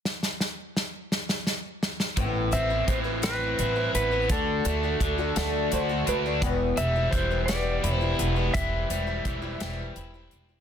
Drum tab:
HH |------------|x-x-x-x-x-x-|x-x-x-x-x-x-|x-x-x-x-x-x-|
SD |ooo-o-ooo-oo|------o-----|------o-----|------o-----|
BD |------------|o---o-------|o---o-------|o---o-------|

HH |x-x-x-x-x-x-|
SD |------o-----|
BD |o---o-------|